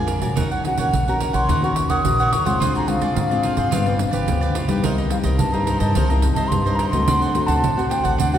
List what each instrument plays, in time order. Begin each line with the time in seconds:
Already playing: upright bass F2, nylon-string guitar F3
0.07 cavaquinho D4 A#4 D5 G#5, pandeiro
0.21 upright bass A#1, nylon-string guitar C#4 F#4 A#4, cavaquinho A#4 D5 G#5, pandeiro
0.35 upright bass D#2, nylon-string guitar D#3, cavaquinho D#4 A#4 C#5 F#5, pandeiro
0.51 cavaquinho A#4 C#5 F#5, pandeiro
0.63 nylon-string guitar C#4 F#4 A#4, flute F#5, muted cavaquinho stroke, pandeiro
0.78 upright bass D#2, cavaquinho A#4 C#5 F#5, pandeiro
0.93 upright bass A#1, nylon-string guitar A#2, pandeiro
1.08 nylon-string guitar C#4 F#4 A#4, cavaquinho A#4 C#5 F#5, flute A#5, pandeiro
1.20 cavaquinho D#4 A#4 C#5 F#5, pandeiro
1.33 upright bass A#1, cavaquinho A#4 C#5 F#5, flute C6, pandeiro
1.49 upright bass D#2, nylon-string guitar D#3, cavaquinho D#4 A#4 C#5 F#5, pandeiro
1.62 nylon-string guitar C#4 F#4 A#4, cavaquinho A#4 C#5 F#5, flute C#6, pandeiro
1.76 muted cavaquinho stroke, pandeiro
1.90 upright bass D#2, cavaquinho A#4 C#5 F#5, flute D#6, pandeiro
2.04 upright bass A#1, nylon-string guitar A#2 C#4 F#4 A#4, pandeiro
2.20 cavaquinho A#4 C#5 F#5, pandeiro
2.32 cavaquinho D#4 A#4 C#5 F#5, flute C#6, pandeiro
2.45 upright bass A#1, nylon-string guitar G#3 C4 F4, cavaquinho A#4 C#5 F#5, flute C6, pandeiro
2.60 upright bass D2, nylon-string guitar D3, cavaquinho F4 G#4 C5 D5, pandeiro
2.75 cavaquinho G#4 C5 D5, flute A#5, pandeiro
2.88 nylon-string guitar G#3 C4 F4, flute F5, muted cavaquinho stroke, pandeiro
3.01 upright bass D2, cavaquinho G#4 C5 D5, pandeiro
3.15 upright bass G#2, nylon-string guitar D3, pandeiro
3.30 nylon-string guitar G#3 C4 F4, cavaquinho G#4 C5 D5, pandeiro
3.43 cavaquinho F4 G#4 C5 D5, pandeiro
3.57 upright bass G#2, cavaquinho G#4 C5 D5, pandeiro
3.71 upright bass G1, nylon-string guitar G2 F3 B3 D4, cavaquinho F4 G4 B4 D5, pandeiro
3.86 nylon-string guitar F3 B3 D4, cavaquinho G4 B4 D5, pandeiro
3.99 muted cavaquinho stroke, pandeiro
4.11 upright bass G1, cavaquinho G4 B4 D5, pandeiro
4.26 upright bass D2, nylon-string guitar D3 F3 B3 D4, pandeiro
4.41 cavaquinho G4 B4 D5, pandeiro
4.55 cavaquinho F4 G4 B4 D5, pandeiro
4.68 upright bass B1, nylon-string guitar G3 A#3 D#4, cavaquinho G4 B4 D5, pandeiro
4.83 upright bass C2, nylon-string guitar C3, cavaquinho D#4 A#4 C5 D#5, pandeiro
4.98 cavaquinho A#4 C5 D#5, pandeiro
5.10 nylon-string guitar G3 A#3 D#4, flute F5, muted cavaquinho stroke, pandeiro
5.24 upright bass C2, cavaquinho A#4 C5 D#5, pandeiro
5.39 nylon-string guitar G2, upright bass G2, flute A5, pandeiro
5.52 nylon-string guitar G3 A#3 D#4, cavaquinho A#4 C5 D#5, flute A#5, pandeiro
5.66 cavaquinho D#4 A#4 C5 D#5, pandeiro
5.79 upright bass G2, cavaquinho A#4 C5 D#5, flute A5, pandeiro
5.95 upright bass C2, nylon-string guitar C3, cavaquinho D#4 A#4 C5 D#5, pandeiro
6.08 nylon-string guitar G3 A#3 D#4, cavaquinho C5 D#5, flute A#5, pandeiro
6.12 cavaquinho A#4
6.22 muted cavaquinho stroke, pandeiro
6.34 upright bass C2, cavaquinho D#5, flute A5, pandeiro
6.38 cavaquinho A#4 C5
6.48 upright bass G2, nylon-string guitar G2 G3 A#3, flute C6, pandeiro
6.52 nylon-string guitar D#4
6.66 cavaquinho A#4 C5 D#5, pandeiro
6.76 cavaquinho D#4, flute A#5, pandeiro
6.80 cavaquinho A#4 C5 D#5
6.89 upright bass C#2, nylon-string guitar A3 C4, cavaquinho D#5, flute C6, pandeiro
6.94 nylon-string guitar F#4, cavaquinho A#4 C5
7.07 upright bass D2, nylon-string guitar D3, cavaquinho D4 C5 D5 F#5, pandeiro
7.21 cavaquinho C5 D5 F#5, pandeiro
7.34 nylon-string guitar A3 C4 F#4, muted cavaquinho stroke, pandeiro
7.47 upright bass D2, cavaquinho C5 D5 F#5, flute A5, pandeiro
7.62 upright bass A1, nylon-string guitar A2, pandeiro
7.76 nylon-string guitar A3 C4 F#4, cavaquinho C5 D5 F#5, pandeiro
7.90 cavaquinho D4 C5 D5 F#5, flute G5, pandeiro
8.04 upright bass A1, cavaquinho C5 D5 F#5, flute F#5, pandeiro
8.18 upright bass D2, nylon-string guitar D3, cavaquinho D4 C5 D5 F#5, pandeiro
8.33 nylon-string guitar A3 C4 F#4, cavaquinho C5 D5 F#5, pandeiro